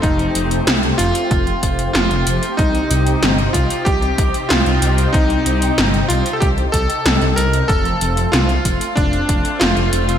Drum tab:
HH |xxxxxxxxxxxxxxxx|xxxxxxxxxxxxxxxx|xxxxxxxxxxxxxxxx|xxxxxxxxxxxxxxxx|
SD |----o-------o---|----o-------o---|----o-------o---|----o-------o---|
BD |o-------o-o-----|o-----o-o-o-----|o-------o-o-----|o-----o-o-o-----|